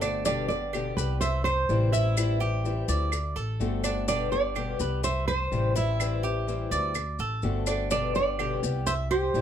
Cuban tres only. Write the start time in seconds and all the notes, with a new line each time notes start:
0.01 D4
0.25 D4
0.73 G4
1.21 E5
1.45 C5
1.93 E4
2.40 G4
2.88 D5
3.36 A4
3.84 D4
4.08 D4
4.56 G4
5.04 E5
5.28 C5
5.76 E4
6.23 G4
6.71 D5
7.20 A4
7.67 D4
7.91 D4
8.39 G4
8.87 E5
9.11 C5